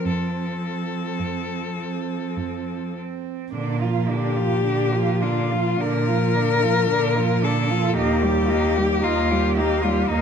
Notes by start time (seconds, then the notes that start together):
Already playing: F3 C4
0.05 F2 A4
0.62 C4
1.19 F2
1.79 C4
2.37 F2
2.96 C4
3.53 A#2 D3 D4
3.81 F3 F4
4.09 D3 D4 G4
4.36 F3 F4
4.64 A#2 D3 D4
4.93 F3 F4
5.22 D3 D4 F4
5.51 F3 F4
5.79 A#2 D3 D4 A#4
6.07 F3 F4
6.35 D3 D4
6.62 F3 F4
6.88 A#2 D3 D4
7.16 F3 F4
7.42 D3 D4 A4
7.69 F3 F4
7.95 D#2 A#3 D#4 G4
8.22 G3 G4
8.49 A#3 D#4
8.76 G3 G4
9.02 D#2 A#3 D#4 F4
9.31 G3 G4
9.56 A#3 D#4 G4
9.82 G3 F4 G4
10.09 D#2 A#3 D#4